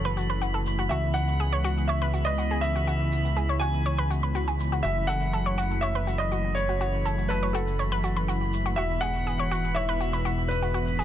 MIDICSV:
0, 0, Header, 1, 7, 480
1, 0, Start_track
1, 0, Key_signature, 3, "minor"
1, 0, Tempo, 491803
1, 885, Time_signature, 4, 2, 24, 8
1, 10780, End_track
2, 0, Start_track
2, 0, Title_t, "Synth texture"
2, 0, Program_c, 0, 99
2, 0, Note_on_c, 0, 83, 75
2, 10780, Note_off_c, 0, 83, 0
2, 10780, End_track
3, 0, Start_track
3, 0, Title_t, "Grand piano"
3, 0, Program_c, 1, 0
3, 0, Note_on_c, 1, 69, 73
3, 359, Note_off_c, 1, 69, 0
3, 871, Note_on_c, 1, 76, 78
3, 1111, Note_on_c, 1, 78, 85
3, 1126, Note_off_c, 1, 76, 0
3, 1831, Note_on_c, 1, 76, 79
3, 1860, Note_off_c, 1, 78, 0
3, 2194, Note_on_c, 1, 75, 93
3, 2213, Note_off_c, 1, 76, 0
3, 2550, Note_on_c, 1, 76, 100
3, 2569, Note_off_c, 1, 75, 0
3, 3478, Note_off_c, 1, 76, 0
3, 3509, Note_on_c, 1, 80, 89
3, 3963, Note_off_c, 1, 80, 0
3, 4711, Note_on_c, 1, 76, 96
3, 4951, Note_on_c, 1, 78, 99
3, 4966, Note_off_c, 1, 76, 0
3, 5671, Note_on_c, 1, 76, 90
3, 5700, Note_off_c, 1, 78, 0
3, 6035, Note_on_c, 1, 75, 90
3, 6053, Note_off_c, 1, 76, 0
3, 6373, Note_off_c, 1, 75, 0
3, 6390, Note_on_c, 1, 73, 92
3, 7111, Note_on_c, 1, 71, 79
3, 7140, Note_off_c, 1, 73, 0
3, 7351, Note_on_c, 1, 69, 69
3, 7366, Note_off_c, 1, 71, 0
3, 8039, Note_off_c, 1, 69, 0
3, 8551, Note_on_c, 1, 76, 96
3, 8792, Note_on_c, 1, 78, 115
3, 8805, Note_off_c, 1, 76, 0
3, 9511, Note_on_c, 1, 76, 94
3, 9540, Note_off_c, 1, 78, 0
3, 10232, Note_on_c, 1, 71, 78
3, 10260, Note_off_c, 1, 76, 0
3, 10780, Note_off_c, 1, 71, 0
3, 10780, End_track
4, 0, Start_track
4, 0, Title_t, "Synth arpeggio sound"
4, 0, Program_c, 2, 84
4, 49, Note_on_c, 2, 71, 99
4, 110, Note_off_c, 2, 71, 0
4, 165, Note_on_c, 2, 66, 70
4, 231, Note_off_c, 2, 66, 0
4, 289, Note_on_c, 2, 71, 74
4, 350, Note_off_c, 2, 71, 0
4, 405, Note_on_c, 2, 66, 80
4, 444, Note_off_c, 2, 66, 0
4, 529, Note_on_c, 2, 69, 75
4, 621, Note_off_c, 2, 69, 0
4, 769, Note_on_c, 2, 66, 72
4, 830, Note_off_c, 2, 66, 0
4, 885, Note_on_c, 2, 66, 81
4, 924, Note_off_c, 2, 66, 0
4, 1365, Note_on_c, 2, 68, 77
4, 1405, Note_off_c, 2, 68, 0
4, 1489, Note_on_c, 2, 73, 72
4, 1550, Note_off_c, 2, 73, 0
4, 1605, Note_on_c, 2, 66, 96
4, 1644, Note_off_c, 2, 66, 0
4, 1845, Note_on_c, 2, 73, 72
4, 1884, Note_off_c, 2, 73, 0
4, 1969, Note_on_c, 2, 71, 97
4, 2030, Note_off_c, 2, 71, 0
4, 2085, Note_on_c, 2, 66, 75
4, 2151, Note_off_c, 2, 66, 0
4, 2209, Note_on_c, 2, 71, 77
4, 2270, Note_off_c, 2, 71, 0
4, 2325, Note_on_c, 2, 66, 78
4, 2364, Note_off_c, 2, 66, 0
4, 2449, Note_on_c, 2, 68, 73
4, 2541, Note_off_c, 2, 68, 0
4, 2689, Note_on_c, 2, 66, 75
4, 2750, Note_off_c, 2, 66, 0
4, 2805, Note_on_c, 2, 66, 81
4, 2844, Note_off_c, 2, 66, 0
4, 3285, Note_on_c, 2, 68, 79
4, 3324, Note_off_c, 2, 68, 0
4, 3409, Note_on_c, 2, 73, 73
4, 3470, Note_off_c, 2, 73, 0
4, 3525, Note_on_c, 2, 66, 95
4, 3565, Note_off_c, 2, 66, 0
4, 3765, Note_on_c, 2, 73, 76
4, 3805, Note_off_c, 2, 73, 0
4, 3889, Note_on_c, 2, 71, 101
4, 3950, Note_off_c, 2, 71, 0
4, 4005, Note_on_c, 2, 66, 69
4, 4071, Note_off_c, 2, 66, 0
4, 4129, Note_on_c, 2, 71, 72
4, 4190, Note_off_c, 2, 71, 0
4, 4246, Note_on_c, 2, 66, 80
4, 4285, Note_off_c, 2, 66, 0
4, 4369, Note_on_c, 2, 68, 73
4, 4461, Note_off_c, 2, 68, 0
4, 4609, Note_on_c, 2, 66, 72
4, 4670, Note_off_c, 2, 66, 0
4, 4725, Note_on_c, 2, 66, 81
4, 4764, Note_off_c, 2, 66, 0
4, 4965, Note_on_c, 2, 69, 72
4, 5063, Note_off_c, 2, 69, 0
4, 5205, Note_on_c, 2, 69, 79
4, 5245, Note_off_c, 2, 69, 0
4, 5329, Note_on_c, 2, 73, 69
4, 5390, Note_off_c, 2, 73, 0
4, 5445, Note_on_c, 2, 66, 98
4, 5484, Note_off_c, 2, 66, 0
4, 5685, Note_on_c, 2, 73, 74
4, 5725, Note_off_c, 2, 73, 0
4, 5809, Note_on_c, 2, 71, 94
4, 5870, Note_off_c, 2, 71, 0
4, 5925, Note_on_c, 2, 66, 69
4, 5991, Note_off_c, 2, 66, 0
4, 6050, Note_on_c, 2, 71, 75
4, 6111, Note_off_c, 2, 71, 0
4, 6165, Note_on_c, 2, 66, 81
4, 6204, Note_off_c, 2, 66, 0
4, 6529, Note_on_c, 2, 66, 70
4, 6590, Note_off_c, 2, 66, 0
4, 6645, Note_on_c, 2, 66, 82
4, 6684, Note_off_c, 2, 66, 0
4, 6885, Note_on_c, 2, 69, 74
4, 6983, Note_off_c, 2, 69, 0
4, 7125, Note_on_c, 2, 69, 80
4, 7164, Note_off_c, 2, 69, 0
4, 7249, Note_on_c, 2, 73, 74
4, 7310, Note_off_c, 2, 73, 0
4, 7365, Note_on_c, 2, 66, 100
4, 7405, Note_off_c, 2, 66, 0
4, 7605, Note_on_c, 2, 73, 74
4, 7644, Note_off_c, 2, 73, 0
4, 7729, Note_on_c, 2, 71, 99
4, 7790, Note_off_c, 2, 71, 0
4, 7845, Note_on_c, 2, 66, 72
4, 7911, Note_off_c, 2, 66, 0
4, 7969, Note_on_c, 2, 71, 75
4, 8030, Note_off_c, 2, 71, 0
4, 8085, Note_on_c, 2, 66, 80
4, 8124, Note_off_c, 2, 66, 0
4, 8449, Note_on_c, 2, 66, 74
4, 8510, Note_off_c, 2, 66, 0
4, 8565, Note_on_c, 2, 66, 83
4, 8605, Note_off_c, 2, 66, 0
4, 8805, Note_on_c, 2, 68, 73
4, 8903, Note_off_c, 2, 68, 0
4, 9045, Note_on_c, 2, 68, 80
4, 9085, Note_off_c, 2, 68, 0
4, 9169, Note_on_c, 2, 73, 72
4, 9230, Note_off_c, 2, 73, 0
4, 9285, Note_on_c, 2, 66, 97
4, 9325, Note_off_c, 2, 66, 0
4, 9525, Note_on_c, 2, 73, 76
4, 9564, Note_off_c, 2, 73, 0
4, 9650, Note_on_c, 2, 71, 101
4, 9711, Note_off_c, 2, 71, 0
4, 9765, Note_on_c, 2, 66, 71
4, 9831, Note_off_c, 2, 66, 0
4, 9890, Note_on_c, 2, 71, 77
4, 9951, Note_off_c, 2, 71, 0
4, 10005, Note_on_c, 2, 66, 81
4, 10045, Note_off_c, 2, 66, 0
4, 10369, Note_on_c, 2, 66, 72
4, 10430, Note_off_c, 2, 66, 0
4, 10485, Note_on_c, 2, 66, 82
4, 10524, Note_off_c, 2, 66, 0
4, 10725, Note_on_c, 2, 68, 74
4, 10780, Note_off_c, 2, 68, 0
4, 10780, End_track
5, 0, Start_track
5, 0, Title_t, "Analog synth pad"
5, 0, Program_c, 3, 89
5, 0, Note_on_c, 3, 49, 76
5, 0, Note_on_c, 3, 52, 67
5, 0, Note_on_c, 3, 54, 66
5, 0, Note_on_c, 3, 57, 66
5, 0, Note_on_c, 3, 64, 82
5, 846, Note_off_c, 3, 64, 0
5, 847, Note_off_c, 3, 54, 0
5, 847, Note_off_c, 3, 57, 0
5, 885, Note_on_c, 3, 56, 68
5, 885, Note_on_c, 3, 59, 69
5, 885, Note_on_c, 3, 64, 87
5, 4686, Note_off_c, 3, 52, 0
5, 4686, Note_off_c, 3, 64, 0
5, 4687, Note_off_c, 3, 56, 0
5, 4687, Note_off_c, 3, 59, 0
5, 4725, Note_on_c, 3, 52, 68
5, 4725, Note_on_c, 3, 54, 69
5, 4725, Note_on_c, 3, 57, 68
5, 4725, Note_on_c, 3, 64, 84
5, 8526, Note_off_c, 3, 49, 0
5, 8527, Note_off_c, 3, 54, 0
5, 8527, Note_off_c, 3, 57, 0
5, 8565, Note_on_c, 3, 47, 68
5, 8565, Note_on_c, 3, 59, 67
5, 8566, Note_on_c, 3, 44, 74
5, 10780, Note_off_c, 3, 44, 0
5, 10780, Note_off_c, 3, 47, 0
5, 10780, Note_off_c, 3, 52, 0
5, 10780, Note_off_c, 3, 59, 0
5, 10780, Note_off_c, 3, 64, 0
5, 10780, End_track
6, 0, Start_track
6, 0, Title_t, "Detuned saw bass"
6, 0, Program_c, 4, 39
6, 0, Note_on_c, 4, 30, 85
6, 862, Note_off_c, 4, 30, 0
6, 886, Note_on_c, 4, 37, 84
6, 4702, Note_off_c, 4, 37, 0
6, 4726, Note_on_c, 4, 30, 87
6, 8542, Note_off_c, 4, 30, 0
6, 8565, Note_on_c, 4, 28, 85
6, 10780, Note_off_c, 4, 28, 0
6, 10780, End_track
7, 0, Start_track
7, 0, Title_t, "Drums"
7, 169, Note_on_c, 9, 82, 67
7, 266, Note_off_c, 9, 82, 0
7, 293, Note_on_c, 9, 82, 28
7, 390, Note_off_c, 9, 82, 0
7, 409, Note_on_c, 9, 82, 38
7, 506, Note_off_c, 9, 82, 0
7, 649, Note_on_c, 9, 82, 67
7, 746, Note_off_c, 9, 82, 0
7, 773, Note_on_c, 9, 82, 29
7, 870, Note_off_c, 9, 82, 0
7, 889, Note_on_c, 9, 82, 37
7, 987, Note_off_c, 9, 82, 0
7, 1129, Note_on_c, 9, 82, 69
7, 1227, Note_off_c, 9, 82, 0
7, 1253, Note_on_c, 9, 82, 29
7, 1351, Note_off_c, 9, 82, 0
7, 1369, Note_on_c, 9, 82, 37
7, 1467, Note_off_c, 9, 82, 0
7, 1609, Note_on_c, 9, 82, 69
7, 1707, Note_off_c, 9, 82, 0
7, 1733, Note_on_c, 9, 82, 27
7, 1830, Note_off_c, 9, 82, 0
7, 1849, Note_on_c, 9, 82, 38
7, 1947, Note_off_c, 9, 82, 0
7, 2089, Note_on_c, 9, 82, 64
7, 2187, Note_off_c, 9, 82, 0
7, 2213, Note_on_c, 9, 82, 28
7, 2311, Note_off_c, 9, 82, 0
7, 2330, Note_on_c, 9, 82, 39
7, 2427, Note_off_c, 9, 82, 0
7, 2569, Note_on_c, 9, 82, 67
7, 2667, Note_off_c, 9, 82, 0
7, 2693, Note_on_c, 9, 82, 28
7, 2791, Note_off_c, 9, 82, 0
7, 2809, Note_on_c, 9, 82, 39
7, 2907, Note_off_c, 9, 82, 0
7, 3049, Note_on_c, 9, 82, 67
7, 3147, Note_off_c, 9, 82, 0
7, 3174, Note_on_c, 9, 82, 29
7, 3271, Note_off_c, 9, 82, 0
7, 3290, Note_on_c, 9, 82, 40
7, 3387, Note_off_c, 9, 82, 0
7, 3530, Note_on_c, 9, 82, 67
7, 3627, Note_off_c, 9, 82, 0
7, 3654, Note_on_c, 9, 82, 28
7, 3751, Note_off_c, 9, 82, 0
7, 3770, Note_on_c, 9, 82, 36
7, 3867, Note_off_c, 9, 82, 0
7, 4009, Note_on_c, 9, 82, 66
7, 4107, Note_off_c, 9, 82, 0
7, 4134, Note_on_c, 9, 82, 29
7, 4231, Note_off_c, 9, 82, 0
7, 4249, Note_on_c, 9, 82, 39
7, 4347, Note_off_c, 9, 82, 0
7, 4373, Note_on_c, 9, 82, 28
7, 4471, Note_off_c, 9, 82, 0
7, 4489, Note_on_c, 9, 82, 70
7, 4587, Note_off_c, 9, 82, 0
7, 4613, Note_on_c, 9, 82, 29
7, 4711, Note_off_c, 9, 82, 0
7, 4729, Note_on_c, 9, 82, 40
7, 4827, Note_off_c, 9, 82, 0
7, 4969, Note_on_c, 9, 82, 71
7, 5067, Note_off_c, 9, 82, 0
7, 5093, Note_on_c, 9, 82, 31
7, 5191, Note_off_c, 9, 82, 0
7, 5210, Note_on_c, 9, 82, 39
7, 5307, Note_off_c, 9, 82, 0
7, 5450, Note_on_c, 9, 82, 70
7, 5547, Note_off_c, 9, 82, 0
7, 5574, Note_on_c, 9, 82, 29
7, 5671, Note_off_c, 9, 82, 0
7, 5690, Note_on_c, 9, 82, 39
7, 5787, Note_off_c, 9, 82, 0
7, 5929, Note_on_c, 9, 82, 70
7, 6027, Note_off_c, 9, 82, 0
7, 6054, Note_on_c, 9, 82, 29
7, 6151, Note_off_c, 9, 82, 0
7, 6169, Note_on_c, 9, 82, 41
7, 6267, Note_off_c, 9, 82, 0
7, 6409, Note_on_c, 9, 82, 70
7, 6507, Note_off_c, 9, 82, 0
7, 6534, Note_on_c, 9, 82, 30
7, 6631, Note_off_c, 9, 82, 0
7, 6649, Note_on_c, 9, 82, 41
7, 6747, Note_off_c, 9, 82, 0
7, 6890, Note_on_c, 9, 82, 71
7, 6987, Note_off_c, 9, 82, 0
7, 7014, Note_on_c, 9, 82, 33
7, 7112, Note_off_c, 9, 82, 0
7, 7130, Note_on_c, 9, 82, 41
7, 7227, Note_off_c, 9, 82, 0
7, 7369, Note_on_c, 9, 82, 74
7, 7467, Note_off_c, 9, 82, 0
7, 7494, Note_on_c, 9, 82, 31
7, 7591, Note_off_c, 9, 82, 0
7, 7610, Note_on_c, 9, 82, 41
7, 7707, Note_off_c, 9, 82, 0
7, 7849, Note_on_c, 9, 82, 72
7, 7947, Note_off_c, 9, 82, 0
7, 7974, Note_on_c, 9, 82, 32
7, 8071, Note_off_c, 9, 82, 0
7, 8089, Note_on_c, 9, 82, 44
7, 8187, Note_off_c, 9, 82, 0
7, 8329, Note_on_c, 9, 82, 73
7, 8427, Note_off_c, 9, 82, 0
7, 8453, Note_on_c, 9, 82, 31
7, 8551, Note_off_c, 9, 82, 0
7, 8569, Note_on_c, 9, 82, 42
7, 8667, Note_off_c, 9, 82, 0
7, 8809, Note_on_c, 9, 82, 72
7, 8907, Note_off_c, 9, 82, 0
7, 8933, Note_on_c, 9, 82, 32
7, 9031, Note_off_c, 9, 82, 0
7, 9049, Note_on_c, 9, 82, 42
7, 9147, Note_off_c, 9, 82, 0
7, 9289, Note_on_c, 9, 82, 73
7, 9387, Note_off_c, 9, 82, 0
7, 9413, Note_on_c, 9, 82, 30
7, 9511, Note_off_c, 9, 82, 0
7, 9529, Note_on_c, 9, 82, 42
7, 9627, Note_off_c, 9, 82, 0
7, 9769, Note_on_c, 9, 82, 75
7, 9867, Note_off_c, 9, 82, 0
7, 9893, Note_on_c, 9, 82, 32
7, 9991, Note_off_c, 9, 82, 0
7, 10009, Note_on_c, 9, 82, 44
7, 10107, Note_off_c, 9, 82, 0
7, 10249, Note_on_c, 9, 82, 72
7, 10347, Note_off_c, 9, 82, 0
7, 10373, Note_on_c, 9, 82, 32
7, 10471, Note_off_c, 9, 82, 0
7, 10489, Note_on_c, 9, 82, 41
7, 10587, Note_off_c, 9, 82, 0
7, 10613, Note_on_c, 9, 82, 30
7, 10711, Note_off_c, 9, 82, 0
7, 10730, Note_on_c, 9, 82, 74
7, 10780, Note_off_c, 9, 82, 0
7, 10780, End_track
0, 0, End_of_file